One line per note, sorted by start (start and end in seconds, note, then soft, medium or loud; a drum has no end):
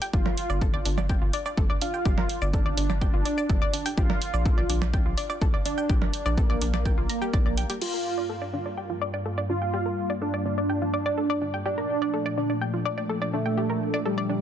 0.02 0.11 G5 loud
0.02 open hi-hat medium
0.13 0.23 G1 loud
0.13 1.00 F4 loud
0.13 0.19 G4 medium
0.13 kick loud
0.13 shaker soft
0.26 0.31 A#4 medium
0.26 percussion blips medium
0.38 open hi-hat loud
0.38 shaker medium
0.50 0.81 G1 loud
0.50 0.59 D5 loud
0.50 shaker soft
0.61 0.71 A4 medium
0.61 kick loud
0.61 shaker soft
0.74 0.83 D5 loud
0.85 1.17 G1 medium
0.85 0.95 D4 medium
0.85 open hi-hat loud
0.85 shaker medium
0.98 1.09 D5 medium
0.98 percussion blips medium
0.98 shaker soft
1.09 1.15 G5 medium
1.09 kick loud
1.09 shaker soft
1.22 1.30 G1 medium
1.22 1.31 F4 medium
1.33 1.39 D5 loud
1.33 open hi-hat loud
1.33 shaker medium
1.46 1.55 D5 loud
1.46 shaker soft
1.57 1.67 G1 loud
1.57 1.67 A4 medium
1.57 kick loud
1.57 shaker soft
1.70 1.79 D5 loud
1.81 1.91 D4 medium
1.81 2.44 F4 loud
1.81 open hi-hat loud
1.81 shaker medium
1.94 2.03 G5 medium
1.94 shaker soft
2.05 2.15 G1 loud
2.05 2.11 G4 medium
2.05 kick loud
2.05 shaker soft
2.18 2.23 A#4 medium
2.18 percussion blips medium
2.29 open hi-hat loud
2.29 shaker medium
2.42 2.73 G1 loud
2.42 2.51 D5 loud
2.42 shaker soft
2.53 3.88 D4 loud
2.53 2.63 A4 medium
2.53 kick loud
2.53 shaker soft
2.66 2.75 D5 loud
2.77 3.09 G1 medium
2.77 2.87 D4 medium
2.77 open hi-hat medium
2.77 shaker medium
2.90 3.01 D5 medium
2.90 percussion blips medium
2.90 shaker soft
3.01 3.07 G5 medium
3.01 kick loud
3.01 shaker soft
3.14 3.22 G1 medium
3.14 3.23 F4 medium
3.25 3.31 D5 loud
3.25 open hi-hat loud
3.25 shaker medium
3.38 3.47 D5 loud
3.38 shaker soft
3.50 3.59 G1 loud
3.50 3.59 A4 medium
3.50 kick loud
3.50 shaker soft
3.62 3.71 D5 loud
3.73 3.83 D4 medium
3.73 open hi-hat loud
3.73 shaker medium
3.86 3.95 G5 medium
3.86 open hi-hat medium
3.86 shaker soft
3.97 4.07 A#1 loud
3.97 4.84 F4 loud
3.97 4.03 G4 medium
3.97 kick loud
3.97 shaker soft
4.10 4.15 A#4 medium
4.10 percussion blips medium
4.22 open hi-hat loud
4.22 shaker medium
4.34 4.65 A#1 loud
4.34 4.43 D5 loud
4.34 shaker soft
4.45 4.55 A4 medium
4.45 kick loud
4.45 shaker soft
4.58 4.67 D5 loud
4.69 5.01 A#1 medium
4.69 4.79 D4 medium
4.69 open hi-hat loud
4.69 shaker medium
4.82 4.93 D5 medium
4.82 percussion blips medium
4.82 shaker soft
4.94 4.99 G5 medium
4.94 kick loud
4.94 shaker soft
5.06 5.14 A#1 medium
5.06 5.15 F4 medium
5.17 5.23 D5 loud
5.17 open hi-hat loud
5.17 shaker medium
5.30 5.39 D5 loud
5.30 shaker soft
5.41 5.51 A#1 loud
5.41 5.51 A4 medium
5.41 kick loud
5.41 shaker soft
5.54 5.63 D5 loud
5.65 5.75 D4 medium
5.65 6.39 D4 loud
5.65 open hi-hat loud
5.65 shaker medium
5.78 5.87 G5 medium
5.78 shaker soft
5.90 5.99 A#1 loud
5.90 5.95 G4 medium
5.90 kick loud
5.90 shaker soft
6.02 6.07 A#4 medium
6.02 percussion blips medium
6.14 open hi-hat loud
6.14 shaker medium
6.26 6.57 A#1 loud
6.26 6.35 D5 loud
6.26 shaker soft
6.38 7.72 A#3 loud
6.38 6.47 A4 medium
6.38 kick loud
6.38 shaker soft
6.50 6.59 D5 loud
6.61 6.93 A#1 medium
6.61 6.71 D4 medium
6.61 open hi-hat loud
6.61 shaker medium
6.74 6.85 D5 medium
6.74 percussion blips medium
6.74 shaker soft
6.86 6.91 G5 medium
6.86 kick loud
6.86 shaker soft
6.98 7.06 A#1 medium
6.98 7.07 F4 medium
7.09 7.19 A#5 medium
7.09 open hi-hat loud
7.09 shaker medium
7.22 7.27 G4 loud
7.22 shaker soft
7.33 7.65 A#1 medium
7.33 7.39 D5 loud
7.33 kick loud
7.33 shaker soft
7.46 7.55 D5 medium
7.57 7.69 G5 loud
7.57 open hi-hat loud
7.57 shaker medium
7.70 7.79 G4 medium
7.70 open hi-hat medium
7.70 shaker soft
7.81 11.62 G2 medium
7.81 11.62 G3 medium
7.81 11.62 A#3 medium
7.81 11.62 F4 medium
7.81 8.68 F4 loud
7.81 7.87 G4 medium
7.81 crash medium
7.94 7.99 A#4 medium
8.18 8.27 D5 medium
8.29 8.39 A4 medium
8.42 8.51 D5 medium
8.53 8.63 D4 medium
8.66 8.77 D5 medium
8.78 8.83 G5 medium
8.90 8.99 F4 medium
9.02 9.07 D5 loud
9.14 9.23 D5 loud
9.26 9.35 A4 medium
9.38 9.47 D5 loud
9.50 9.59 D4 medium
9.50 10.12 F4 medium
9.62 9.71 G5 medium
9.74 9.79 G4 medium
9.86 9.91 A#4 medium
10.10 10.19 D5 loud
10.22 11.56 D4 loud
10.22 10.31 A4 medium
10.34 10.43 D5 loud
10.46 10.55 D4 medium
10.58 10.69 D5 medium
10.70 10.75 G5 medium
10.82 10.91 F4 medium
10.94 10.99 D5 medium
11.06 11.15 D5 loud
11.18 11.27 A4 medium
11.30 11.39 D5 loud
11.42 11.51 D4 medium
11.54 11.63 G5 medium
11.65 14.41 A#2 medium
11.65 14.41 F3 medium
11.65 14.41 A3 medium
11.65 12.52 D4 loud
11.65 14.41 D4 medium
11.65 11.71 G4 medium
11.78 11.83 A#4 medium
12.02 12.11 D5 loud
12.14 12.23 A4 medium
12.26 12.35 D5 loud
12.38 12.47 D4 medium
12.50 12.61 D5 medium
12.61 12.67 G5 medium
12.74 12.83 F4 medium
12.85 12.91 D5 loud
12.98 13.07 D5 loud
13.09 13.19 A4 medium
13.22 13.31 D5 loud
13.33 13.96 A3 medium
13.33 13.43 D4 medium
13.46 13.55 G5 medium
13.57 13.63 G4 medium
13.70 13.75 A#4 medium
13.94 14.03 D5 loud
14.05 14.41 G3 loud
14.05 14.15 A4 medium
14.18 14.27 D5 loud
14.29 14.39 D4 medium